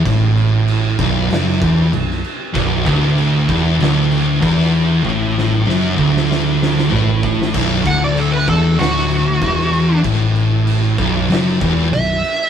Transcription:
<<
  \new Staff \with { instrumentName = "Lead electric guitar" } { \time 4/4 \key b \minor \tempo 4 = 96 r1 | r1 | r1 | r8 fis''16 d''16 a'16 b'16 a'8 fis'2 |
r2. e''4 | }
  \new Staff \with { instrumentName = "Distorted electric guitar" } { \clef bass \time 4/4 \key b \minor a,4. b,,8 fis,8 e,8 b,,8 r8 | b,,8 d,4 e,8 d,4 e,4 | a,4 fis,8 d,4. a,4 | b,,8 d,4 e,8 d,4 e,4 |
a,4. b,,8 fis,8 e,8 b,,8 r8 | }
  \new Staff \with { instrumentName = "Distorted electric guitar" } { \clef bass \time 4/4 \key b \minor a,4. b,,8 fis,8 e,8 b,,8 r8 | b,,8 d,4 e,8 d,4 e,4 | a,4 fis,8 d,4. a,4 | b,,8 d,4 e,8 d,4 e,4 |
a,4. b,,8 fis,8 e,8 b,,8 r8 | }
  \new Staff \with { instrumentName = "Distorted electric guitar" } { \clef bass \time 4/4 \key b \minor r1 | b,,8 d,4 e,8 d,4 e,4 | a,4 fis,8 d,4. a,4 | r1 |
r1 | }
  \new Staff \with { instrumentName = "Picked electric bass" } { \clef bass \time 4/4 \key b \minor a,,4. b,,,8 fis,,8 e,,8 b,,,8 r8 | b,,,8 d,,4 e,,8 d,,4 e,,4 | a,,4 fis,,8 d,,4. a,,4 | b,,,8 d,,4 e,,8 d,,4 e,,4 |
a,,4. b,,,8 fis,,8 e,,8 b,,,8 r8 | }
  \new DrumStaff \with { instrumentName = "Drums" } \drummode { \time 4/4 <cymc bd>8 cymc8 cymc8 <cymc bd>8 <cymc sn>8 <cymc bd>8 cymc16 sn16 cymc8 | <cymc bd>8 <cymc bd>8 cymc8 <cymc bd>8 <cymc sn>8 cymc8 <cymc bd>16 sn16 cymc8 | bd8 sn16 tommh16 sn8 bd16 sn16 sn8 sn16 sn16 tomfh8 bd16 sn16 | <cymc bd>8 <cymc bd>8 cymc8 <cymc bd>8 <cymc sn>8 cymc8 <cymc bd>16 sn16 cymc8 |
<cymc bd>8 cymc8 cymc8 <cymc bd>8 <cymc sn>8 <cymc bd>8 cymc8 cymc8 | }
>>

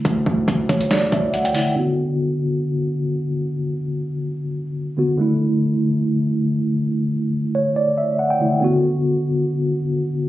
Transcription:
<<
  \new Staff \with { instrumentName = "Tine electric piano" } { \time 4/4 \key b \minor \tempo 4 = 140 r4. cis''8 d''8 e''8 fis''16 g''8. | r1 | r1 | r1 |
r4. cis''8 d''8 e''8 fis''16 g''8. | r1 | }
  \new Staff \with { instrumentName = "Tine electric piano" } { \time 4/4 \key b \minor <d a e'>2.~ <d a e'>8 <d a e'>8 | <d b fis'>1~ | <d b fis'>2.~ <d b fis'>8 <d b fis'>8 | <d a e'>1~ |
<d a e'>2.~ <d a e'>8 <d a e'>8 | <d b fis'>1 | }
  \new Staff \with { instrumentName = "808-style bass" } { \clef bass \time 4/4 \key b \minor d,8 d,8 d,8 d,4 d,4 r8 | r1 | r1 | r1 |
r1 | r1 | }
  \new DrumStaff \with { instrumentName = "Drums" } \drummode { \time 4/4 <hh bd>8 bd8 <hh bd>8 <hh bd>16 hh16 <hh sn>8 <hh bd>8 hh16 hh16 hho8 | r4 r4 r4 r4 | r4 r4 r4 r4 | r4 r4 r4 r4 |
r4 r4 r4 r4 | r4 r4 r4 r4 | }
>>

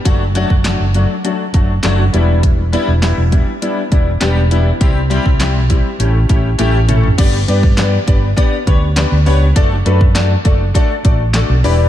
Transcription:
<<
  \new Staff \with { instrumentName = "Grand piano" } { \time 4/4 \key d \major \tempo 4 = 101 <fis a d' fis'>8 <fis a d' fis'>8 <fis a d' fis'>8 <fis a d' fis'>8 <fis a d' fis'>8 <fis a d' fis'>8 <fis a d' fis'>8 <g b d' e'>8~ | <g b d' e'>8 <g b d' e'>8 <g b d' e'>8 <g b d' e'>8 <g b d' e'>8 <g b d' e'>8 <g b d' g'>8 <g b d' e'>8 | <g c' e' g'>8 <g c' e' g'>8 <g c' e' g'>8 <g c' e' g'>8 <a cis' e' g'>8 <a cis' e' g'>8 <a cis' e' g'>8 <a cis' e' a'>8 | <b d' g' b' d''>8 <b d' g' b' d''>8 <b d' g' b' d''>8 <b d' g' b' d''>8 <b d' g' b' d''>8 <b d' g' b' cis''>8 <b d' g' b' d''>8 <b d' g' b' cis''>8 |
<a d' fis' a' d''>8 <a d' fis' a' b'>8 <a d' fis' a' d''>8 <a d' fis' a' d''>8 <a d' fis' a' d''>8 <a d' fis' a' d''>8 <a d' fis' a' d''>8 <d' e' g' b' d''>8 | }
  \new Staff \with { instrumentName = "Fingered electric bass" } { \clef bass \time 4/4 \key d \major fis,,8. fis,,8 fis,,8 r8. fis,,8 fis,,8 e,,8~ | e,,8. e,,8 e,,8 r8. e,,8 e,,4 | c,8. c,8 b,,8 r16 a,,8 a,,8 a,,4 | g,,8 g,4 g,,8 r8 d,8. d,16 cis,8 |
fis,,8 fis,4 fis,,8 r8 a,,8. b,,16 e,,8 | }
  \new DrumStaff \with { instrumentName = "Drums" } \drummode { \time 4/4 <hh bd>8 hh16 bd16 <hc hh sn>8 hh8 hh8 <hh bd>8 <hc hh sn>8 hh8 | <hh bd>8 hh8 <hc hh sn>8 <hh bd>8 hh8 <hh bd>8 <hc hh sn>8 hh8 | <hh bd>8 hh16 bd16 <hc hh sn>8 <hh bd>8 hh8 <hh bd>8 <hh tommh>8 <hh toml>16 tomfh16 | <cymc hh bd>8 hh16 bd16 <hc hh sn>8 <hh bd>8 <hh bd>8 <hh bd>8 <hc hh sn>8 hho8 |
<hh bd>8 hh16 bd16 <hc hh sn>8 <hh bd>8 <hh bd>8 <hh bd>8 <hc hh sn>8 hho8 | }
>>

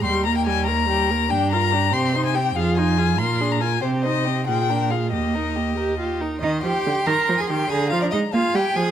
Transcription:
<<
  \new Staff \with { instrumentName = "Violin" } { \time 6/8 \key ees \major \tempo 4. = 94 c'''8 bes''16 g''16 aes''8 bes''4. | g''8 bes''4 c'''8. aes''16 g''8 | f''8 aes''4 c'''8. bes''16 aes''8 | c''8 ees''4 g''4 f''8 |
ees''2~ ees''8 r8 | c'''2. | bes''4. aes''4. | }
  \new Staff \with { instrumentName = "Violin" } { \time 6/8 \key ees \major g'8 bes'8 g'8 bes'8 g'8 bes'8 | g'8 bes'8 g'8 g'8 c''8 g'8 | aes'8 f'8 aes'8 bes'8 aes'8 bes'8 | g'8 c''8 g'8 aes'8 bes'8 aes'8 |
g'8 bes'8 g'8 bes'8 g'8 bes'8 | ees''8 g''4 bes''8. aes''16 g''8 | aes''8 f''16 d''16 ees''8 f''8 g''8 aes''8 | }
  \new Staff \with { instrumentName = "Cello" } { \time 6/8 \key ees \major ees,2. | g,4. c4. | f,4. bes,4. | c4. bes,4. |
ees,2~ ees,8 r8 | ees'8 g'4 bes'8. aes'16 g'8 | aes'8 f'16 d'16 ees'8 f'8 g'8 aes'8 | }
  \new Staff \with { instrumentName = "Viola" } { \time 6/8 \key ees \major g8 bes8 g8 bes8 g8 bes8 | d'8 f'8 d'8 c'8 ees'8 c'8 | f'8 ees'8 f'8 f'8 d'8 f'8 | c'8 ees'8 c'8 f'8 d'8 f'8 |
bes8 ees'8 bes8 g'8 f'8 ees'8 | ees8 f8 d8 ees8 f8 ees8 | d8 f8 aes8 bes8 g8 f8 | }
>>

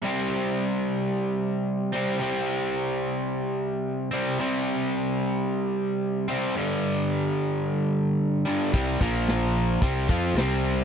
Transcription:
<<
  \new Staff \with { instrumentName = "Overdriven electric guitar" } { \clef bass \time 4/4 \key g \phrygian \tempo 4 = 110 <c g c'>2.~ <c g c'>8 <c g c'>8 | <c g c'>2.~ <c g c'>8 <c g c'>8 | <c g c'>2.~ <c g c'>8 <c g c'>8 | <g, d g>2.~ <g, d g>8 <g, d g>8 |
<c g c'>8 <bes, f bes>4. <c g c'>8 <f c' f'>8 <c g c'>4 | }
  \new Staff \with { instrumentName = "Fingered electric bass" } { \clef bass \time 4/4 \key g \phrygian r1 | r1 | r1 | r1 |
c,8 bes,,4. c,8 f,8 c,4 | }
  \new DrumStaff \with { instrumentName = "Drums" } \drummode { \time 4/4 r4 r4 r4 r4 | r4 r4 r4 r4 | r4 r4 r4 r4 | r4 r4 r4 r4 |
<cymc bd>8 bd8 <hho sn>4 <hho bd>8 <bd sn>8 <hho sn>4 | }
>>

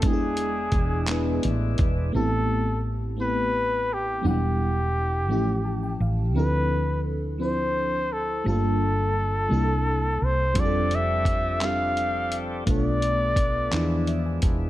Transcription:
<<
  \new Staff \with { instrumentName = "Flugelhorn" } { \time 6/8 \key a \minor \tempo 4. = 57 gis'2 r4 | a'4 r8 b'4 g'8 | g'2~ g'8 r8 | b'4 r8 c''4 a'8 |
a'2~ a'8 c''8 | d''8 e''4 f''4 r8 | d''2~ d''8 r8 | }
  \new Staff \with { instrumentName = "FM electric piano" } { \time 6/8 \key a \minor << { r2. | r2. | r2 a''16 g''16 f''8 | r2. |
r2. | r2. | r2 e''16 gis''16 a''8 | } \\ { <gis b d' e' g' gis'>4. <gis b d' e' b'>4. | <a b c' e' g'>4. <a b c' e' g'>4. | <fis g b d' e' fis''>4. <f a cis' e' g'>4. | <f c' d' e' a'>4. <f c' d' e' c''>4. |
<g a bes d' f' a'>4. <g bes d' e' a'>4. | <g c' d' f' gis' a'>4. <g c' d' f' g'>4. | <a b d' f' a'>4. <f b d' e' f' gis'>4. | } >> }
  \new Staff \with { instrumentName = "Tonewheel organ" } { \time 6/8 \key a \minor <gis d' e'>2. | r2. | r2. | r2. |
r2. | <f c' d' g' a'>2. | <a b>4. <f gis e'>4. | }
  \new Staff \with { instrumentName = "Fretless electric bass" } { \clef bass \time 6/8 \key a \minor e,,4 e,,4 a,,8 e,,8 | a,,2. | e,,4. a,,4 a,,8 | d,2. |
g,,4. c,4 c,8 | f,,2. | b,,4. e,4 e,,8 | }
  \new DrumStaff \with { instrumentName = "Drums" } \drummode { \time 6/8 <hh bd>8 hh8 <hh bd>8 <hc hh>8 hh8 <hh bd>8 | r4. r4. | r4. r4. | r4. r4. |
r4. r4. | <hh bd>8 hh8 <hh bd>8 <hc hh>8 hh8 hh8 | <hh bd>8 hh8 <hh bd>8 <hc hh>8 hh8 <hh bd>8 | }
>>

